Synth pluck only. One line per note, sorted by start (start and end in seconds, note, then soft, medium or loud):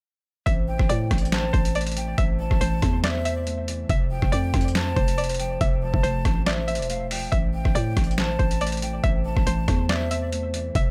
0.46 0.87 E5 loud
0.89 1.50 D5 medium
1.53 1.70 C5 medium
1.75 2.16 D5 medium
2.18 2.58 E5 loud
2.61 3.01 C5 medium
3.04 3.20 D5 medium
3.25 3.86 E5 medium
3.90 4.30 E5 loud
4.32 4.93 D5 loud
4.96 5.13 C5 medium
5.18 5.58 D5 medium
5.61 6.01 E5 loud
6.03 6.44 C5 loud
6.46 6.63 D5 medium
6.68 7.28 E5 medium
7.32 7.72 E5 loud
7.75 8.35 D5 medium
8.39 8.56 C5 medium
8.61 9.01 D5 loud
9.04 9.44 E5 loud
9.47 9.87 C5 medium
9.90 10.06 D5 medium
10.11 10.71 E5 medium
10.76 10.91 E5 loud